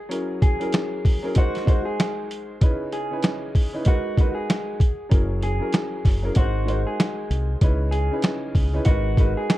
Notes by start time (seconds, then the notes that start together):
0.09 F#3 C#4 E4 G#4 A#4, closed hi-hat
0.42 G#4, kick, closed hi-hat
0.59 F#3 C#4 E4 G#4 A#4, closed hi-hat
0.73 snare, closed hi-hat
1.05 kick, open hi-hat
1.22 F#3 C#4 E4 G#4 A#4
1.35 G#3 D#4 F#4 A#4 C5, kick, closed hi-hat
1.55 snare, closed hi-hat
1.66 G#3 D#4 F#4 A#4 C5, kick, closed hi-hat
1.85 G#4
2.00 snare, closed hi-hat
2.31 closed hi-hat
2.61 C#3 C#4 D#4 E4 B4, kick, closed hi-hat
2.92 G#4, closed hi-hat
3.10 C#3 C#4 D#4 E4 B4
3.23 snare, closed hi-hat
3.55 kick, open hi-hat
3.73 C#3 C#4 D#4 E4 B4
3.85 G#3 D#4 F#4 A#4 B4, kick, closed hi-hat
4.17 G#3 D#4 F#4 A#4 B4, kick, closed hi-hat
4.35 G#4
4.50 snare, closed hi-hat
4.80 kick, closed hi-hat
5.09 F#1 F#3 C#4 E4 G#4 A#4, kick, closed hi-hat
5.43 G#4, closed hi-hat
5.59 F#3 C#4 E4 G#4 A#4
5.73 snare, closed hi-hat
6.05 F#1, kick, snare, open hi-hat
6.22 F#3 C#4 E4 G#4 A#4
6.35 G#1 G#3 D#4 F#4 A#4 C5, kick, closed hi-hat
6.66 G#3 D#4 F#4 A#4 C5, closed hi-hat
6.87 G#4
7.00 snare, closed hi-hat
7.30 C2, closed hi-hat
7.61 C#2 C#3 C#4 D#4 E4 B4, kick, closed hi-hat
7.91 G#4, closed hi-hat
8.11 C#3 C#4 D#4 E4 B4
8.22 snare, closed hi-hat
8.55 C#2, kick, open hi-hat
8.73 C#3 C#4 D#4 E4 B4
8.85 G#1 G#3 D#4 F#4 A#4 B4, kick, closed hi-hat
9.17 G#3 D#4 F#4 A#4 B4, kick, closed hi-hat
9.37 G#4
9.50 snare, closed hi-hat